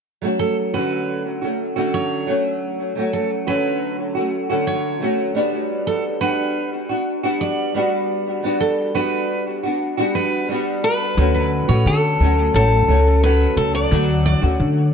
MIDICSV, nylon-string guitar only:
0, 0, Header, 1, 2, 480
1, 0, Start_track
1, 0, Key_signature, 2, "major"
1, 0, Tempo, 684151
1, 158, Time_signature, 4, 2, 24, 8
1, 10481, End_track
2, 0, Start_track
2, 0, Title_t, "Nylon-string guitar"
2, 0, Program_c, 0, 24
2, 151, Note_on_c, 0, 54, 52
2, 160, Note_on_c, 0, 57, 57
2, 167, Note_on_c, 0, 61, 51
2, 174, Note_on_c, 0, 66, 55
2, 509, Note_off_c, 0, 66, 0
2, 513, Note_off_c, 0, 61, 0
2, 515, Note_off_c, 0, 54, 0
2, 517, Note_off_c, 0, 57, 0
2, 517, Note_on_c, 0, 66, 60
2, 522, Note_on_c, 0, 61, 53
2, 525, Note_on_c, 0, 57, 49
2, 530, Note_on_c, 0, 54, 49
2, 531, Note_on_c, 0, 50, 48
2, 991, Note_off_c, 0, 66, 0
2, 994, Note_on_c, 0, 66, 48
2, 997, Note_off_c, 0, 61, 0
2, 1002, Note_off_c, 0, 57, 0
2, 1006, Note_on_c, 0, 61, 40
2, 1016, Note_on_c, 0, 57, 40
2, 1027, Note_off_c, 0, 50, 0
2, 1225, Note_off_c, 0, 66, 0
2, 1228, Note_off_c, 0, 61, 0
2, 1230, Note_off_c, 0, 57, 0
2, 1233, Note_on_c, 0, 66, 54
2, 1236, Note_on_c, 0, 61, 53
2, 1239, Note_on_c, 0, 57, 55
2, 1241, Note_off_c, 0, 54, 0
2, 1244, Note_on_c, 0, 54, 48
2, 1247, Note_on_c, 0, 50, 54
2, 1583, Note_off_c, 0, 54, 0
2, 1591, Note_on_c, 0, 54, 55
2, 1592, Note_off_c, 0, 57, 0
2, 1596, Note_off_c, 0, 66, 0
2, 1597, Note_off_c, 0, 61, 0
2, 1600, Note_on_c, 0, 57, 57
2, 1603, Note_off_c, 0, 50, 0
2, 1606, Note_on_c, 0, 61, 52
2, 1611, Note_on_c, 0, 66, 56
2, 2069, Note_off_c, 0, 54, 0
2, 2072, Note_on_c, 0, 54, 51
2, 2074, Note_off_c, 0, 57, 0
2, 2080, Note_off_c, 0, 61, 0
2, 2083, Note_on_c, 0, 57, 50
2, 2088, Note_on_c, 0, 61, 54
2, 2093, Note_off_c, 0, 66, 0
2, 2096, Note_on_c, 0, 66, 54
2, 2424, Note_off_c, 0, 66, 0
2, 2429, Note_off_c, 0, 61, 0
2, 2433, Note_on_c, 0, 66, 59
2, 2434, Note_off_c, 0, 57, 0
2, 2435, Note_off_c, 0, 54, 0
2, 2437, Note_on_c, 0, 61, 57
2, 2442, Note_on_c, 0, 57, 51
2, 2445, Note_on_c, 0, 54, 45
2, 2449, Note_on_c, 0, 50, 48
2, 2907, Note_off_c, 0, 66, 0
2, 2910, Note_on_c, 0, 66, 49
2, 2914, Note_off_c, 0, 61, 0
2, 2920, Note_off_c, 0, 57, 0
2, 2922, Note_on_c, 0, 61, 43
2, 2932, Note_on_c, 0, 57, 35
2, 2943, Note_off_c, 0, 50, 0
2, 3146, Note_off_c, 0, 66, 0
2, 3150, Note_off_c, 0, 61, 0
2, 3153, Note_off_c, 0, 57, 0
2, 3154, Note_on_c, 0, 66, 61
2, 3159, Note_on_c, 0, 61, 59
2, 3162, Note_off_c, 0, 54, 0
2, 3162, Note_on_c, 0, 57, 58
2, 3165, Note_on_c, 0, 54, 48
2, 3168, Note_on_c, 0, 50, 47
2, 3502, Note_off_c, 0, 54, 0
2, 3510, Note_on_c, 0, 54, 51
2, 3513, Note_off_c, 0, 57, 0
2, 3516, Note_off_c, 0, 66, 0
2, 3519, Note_off_c, 0, 61, 0
2, 3522, Note_on_c, 0, 57, 56
2, 3524, Note_off_c, 0, 50, 0
2, 3526, Note_on_c, 0, 61, 59
2, 3535, Note_on_c, 0, 66, 54
2, 3748, Note_off_c, 0, 54, 0
2, 3751, Note_on_c, 0, 55, 63
2, 3756, Note_off_c, 0, 57, 0
2, 3757, Note_off_c, 0, 66, 0
2, 3759, Note_off_c, 0, 61, 0
2, 3759, Note_on_c, 0, 59, 66
2, 3762, Note_on_c, 0, 62, 74
2, 3766, Note_on_c, 0, 66, 68
2, 4352, Note_off_c, 0, 66, 0
2, 4355, Note_off_c, 0, 55, 0
2, 4355, Note_on_c, 0, 66, 62
2, 4356, Note_off_c, 0, 59, 0
2, 4357, Note_off_c, 0, 62, 0
2, 4360, Note_on_c, 0, 62, 54
2, 4365, Note_on_c, 0, 59, 53
2, 4369, Note_on_c, 0, 55, 49
2, 4832, Note_off_c, 0, 66, 0
2, 4835, Note_on_c, 0, 66, 47
2, 4842, Note_off_c, 0, 59, 0
2, 4845, Note_off_c, 0, 55, 0
2, 4845, Note_off_c, 0, 62, 0
2, 4848, Note_on_c, 0, 62, 41
2, 4859, Note_on_c, 0, 59, 40
2, 5067, Note_off_c, 0, 66, 0
2, 5072, Note_off_c, 0, 62, 0
2, 5075, Note_on_c, 0, 66, 64
2, 5078, Note_off_c, 0, 59, 0
2, 5080, Note_on_c, 0, 62, 57
2, 5087, Note_on_c, 0, 59, 54
2, 5090, Note_on_c, 0, 55, 50
2, 5425, Note_off_c, 0, 55, 0
2, 5433, Note_off_c, 0, 59, 0
2, 5433, Note_on_c, 0, 55, 57
2, 5438, Note_off_c, 0, 66, 0
2, 5440, Note_off_c, 0, 62, 0
2, 5441, Note_on_c, 0, 59, 61
2, 5448, Note_on_c, 0, 62, 64
2, 5455, Note_on_c, 0, 66, 65
2, 5903, Note_off_c, 0, 55, 0
2, 5911, Note_on_c, 0, 55, 51
2, 5912, Note_off_c, 0, 59, 0
2, 5921, Note_on_c, 0, 59, 53
2, 5924, Note_off_c, 0, 62, 0
2, 5926, Note_on_c, 0, 62, 65
2, 5932, Note_off_c, 0, 66, 0
2, 5935, Note_on_c, 0, 66, 58
2, 6268, Note_off_c, 0, 66, 0
2, 6272, Note_off_c, 0, 62, 0
2, 6276, Note_off_c, 0, 55, 0
2, 6276, Note_on_c, 0, 66, 63
2, 6278, Note_off_c, 0, 59, 0
2, 6280, Note_on_c, 0, 62, 57
2, 6286, Note_on_c, 0, 59, 59
2, 6292, Note_on_c, 0, 55, 45
2, 6755, Note_off_c, 0, 66, 0
2, 6758, Note_on_c, 0, 66, 53
2, 6763, Note_off_c, 0, 59, 0
2, 6766, Note_off_c, 0, 55, 0
2, 6769, Note_off_c, 0, 62, 0
2, 6772, Note_on_c, 0, 62, 47
2, 6779, Note_on_c, 0, 59, 38
2, 6989, Note_off_c, 0, 66, 0
2, 6994, Note_off_c, 0, 62, 0
2, 6997, Note_on_c, 0, 66, 68
2, 7001, Note_off_c, 0, 59, 0
2, 7003, Note_on_c, 0, 62, 61
2, 7010, Note_on_c, 0, 59, 56
2, 7015, Note_on_c, 0, 55, 49
2, 7349, Note_off_c, 0, 55, 0
2, 7357, Note_off_c, 0, 59, 0
2, 7357, Note_on_c, 0, 55, 59
2, 7359, Note_off_c, 0, 66, 0
2, 7362, Note_off_c, 0, 62, 0
2, 7366, Note_on_c, 0, 59, 56
2, 7373, Note_on_c, 0, 62, 64
2, 7380, Note_on_c, 0, 66, 64
2, 7838, Note_on_c, 0, 50, 65
2, 7839, Note_off_c, 0, 55, 0
2, 7843, Note_off_c, 0, 59, 0
2, 7843, Note_on_c, 0, 54, 64
2, 7846, Note_on_c, 0, 57, 73
2, 7847, Note_off_c, 0, 62, 0
2, 7850, Note_off_c, 0, 66, 0
2, 7850, Note_on_c, 0, 61, 73
2, 7853, Note_on_c, 0, 66, 75
2, 8185, Note_off_c, 0, 66, 0
2, 8194, Note_on_c, 0, 66, 46
2, 8198, Note_off_c, 0, 61, 0
2, 8199, Note_off_c, 0, 50, 0
2, 8202, Note_off_c, 0, 54, 0
2, 8203, Note_off_c, 0, 57, 0
2, 8206, Note_on_c, 0, 61, 41
2, 8217, Note_on_c, 0, 57, 38
2, 8557, Note_off_c, 0, 66, 0
2, 8560, Note_off_c, 0, 57, 0
2, 8561, Note_on_c, 0, 54, 50
2, 8563, Note_off_c, 0, 61, 0
2, 8569, Note_on_c, 0, 57, 56
2, 8573, Note_on_c, 0, 61, 58
2, 8581, Note_on_c, 0, 66, 58
2, 8788, Note_off_c, 0, 54, 0
2, 8797, Note_off_c, 0, 57, 0
2, 8797, Note_on_c, 0, 54, 50
2, 8803, Note_off_c, 0, 61, 0
2, 8805, Note_on_c, 0, 57, 52
2, 8811, Note_off_c, 0, 66, 0
2, 8812, Note_on_c, 0, 61, 54
2, 8818, Note_on_c, 0, 66, 57
2, 9027, Note_off_c, 0, 54, 0
2, 9036, Note_off_c, 0, 57, 0
2, 9036, Note_on_c, 0, 54, 53
2, 9043, Note_off_c, 0, 61, 0
2, 9044, Note_on_c, 0, 57, 53
2, 9049, Note_off_c, 0, 66, 0
2, 9051, Note_on_c, 0, 61, 55
2, 9059, Note_on_c, 0, 66, 61
2, 9272, Note_off_c, 0, 54, 0
2, 9279, Note_off_c, 0, 57, 0
2, 9280, Note_on_c, 0, 54, 54
2, 9286, Note_off_c, 0, 61, 0
2, 9287, Note_on_c, 0, 57, 50
2, 9290, Note_off_c, 0, 66, 0
2, 9295, Note_on_c, 0, 61, 57
2, 9302, Note_on_c, 0, 66, 68
2, 9759, Note_off_c, 0, 57, 0
2, 9760, Note_on_c, 0, 50, 69
2, 9762, Note_off_c, 0, 54, 0
2, 9765, Note_on_c, 0, 54, 67
2, 9767, Note_off_c, 0, 61, 0
2, 9767, Note_on_c, 0, 57, 69
2, 9771, Note_off_c, 0, 66, 0
2, 9774, Note_on_c, 0, 66, 76
2, 10105, Note_off_c, 0, 66, 0
2, 10114, Note_on_c, 0, 66, 45
2, 10120, Note_off_c, 0, 50, 0
2, 10122, Note_off_c, 0, 54, 0
2, 10123, Note_off_c, 0, 57, 0
2, 10124, Note_on_c, 0, 61, 39
2, 10135, Note_on_c, 0, 57, 35
2, 10474, Note_off_c, 0, 57, 0
2, 10477, Note_off_c, 0, 66, 0
2, 10481, Note_off_c, 0, 61, 0
2, 10481, End_track
0, 0, End_of_file